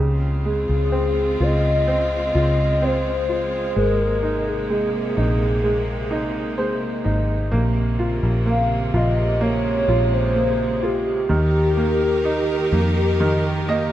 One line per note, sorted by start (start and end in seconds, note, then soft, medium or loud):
0.00 0.65 C#2 medium
0.00 3.72 C#3 medium
0.00 7.48 G#3 medium
0.00 3.72 C4 medium
0.00 3.72 F4 medium
0.45 2.31 G#3 medium
0.45 1.44 G#4 loud
0.69 1.37 C#2 medium
0.92 1.86 C4 medium
1.40 2.31 C#2 medium
1.40 2.33 F4 medium
1.40 2.36 D#5 loud
1.87 2.80 C4 medium
2.35 3.72 C#2 medium
2.35 3.27 F4 medium
2.35 2.86 D#5 loud
2.82 3.73 C4 medium
2.82 3.79 C5 loud
3.29 3.75 F4 medium
3.76 5.13 G#1 medium
3.76 7.48 C3 medium
3.76 4.68 G#3 medium
3.76 7.48 A#3 medium
3.76 4.47 A#4 loud
4.23 5.15 D#4 medium
4.49 7.02 G#4 medium
4.70 5.62 G#3 medium
5.17 7.01 A#1 loud
5.17 6.09 D#4 medium
5.64 6.57 G#3 medium
6.11 7.03 D#4 medium
6.58 7.49 G#3 medium
6.58 7.48 C5 medium
7.04 7.49 G#1 medium
7.04 7.50 D#4 medium
7.52 8.19 A#1 loud
7.52 11.26 C3 medium
7.52 11.26 C#3 medium
7.52 8.45 A#3 medium
7.52 9.39 A#3 medium
7.99 8.92 F4 medium
8.23 8.90 A#1 loud
8.46 9.39 A#3 medium
8.46 8.98 F5 loud
8.94 9.84 A#1 loud
8.94 9.87 F4 medium
8.94 9.42 D#5 loud
9.41 11.28 G#3 medium
9.41 10.34 A#3 medium
9.41 10.15 C#5 loud
9.88 11.26 A#1 medium
9.88 10.81 F4 medium
10.13 10.86 C5 loud
10.35 11.27 A#3 medium
10.82 11.28 F4 medium
10.82 13.92 G4 loud
11.29 12.68 D#2 loud
11.29 13.92 D#3 medium
11.29 13.19 D#3 medium
11.29 13.92 D#4 medium
11.29 13.92 G4 medium
11.29 13.92 A#4 medium
11.77 12.70 A#3 medium
12.25 13.92 D#4 medium
12.72 13.92 F2 loud
12.72 13.67 A#3 medium
13.20 13.92 D#3 medium
13.69 13.92 A#3 medium
13.69 13.92 D#5 medium